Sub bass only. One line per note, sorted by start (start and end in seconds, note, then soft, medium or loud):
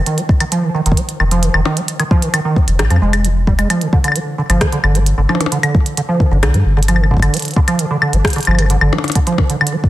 0.86 0.94 F1 loud
1.20 1.49 F1 loud
1.54 1.62 F1 loud
2.68 2.81 F1 loud
2.79 2.88 A#1 medium
2.91 2.99 F2 loud
3.02 3.65 F1 medium
4.50 4.58 G1 loud
4.84 5.13 G1 loud
5.18 5.26 G1 loud
6.31 6.44 G1 loud
6.43 6.51 C2 medium
6.54 6.63 G2 loud
6.66 7.29 G1 medium
8.13 8.22 G1 loud
8.47 8.77 G1 loud
8.81 8.90 G1 loud